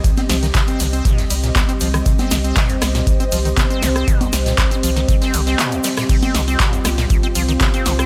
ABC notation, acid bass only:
X:1
M:4/4
L:1/16
Q:1/4=119
K:Cm
V:1 name="Acid bass" clef=bass
C,, C F, E, C, C C, C B,, C,, G, B,, C,, C F, E, | C, C C, C B,, C,, G, B,, C,, C F, E, C, C C, C | B,, C,, G, B,, C,, C F, E, C, C C, C B,, C,, G, B,, | C, C C, C B,, C,, G, B,, C,, C F, E, C, C C, C |]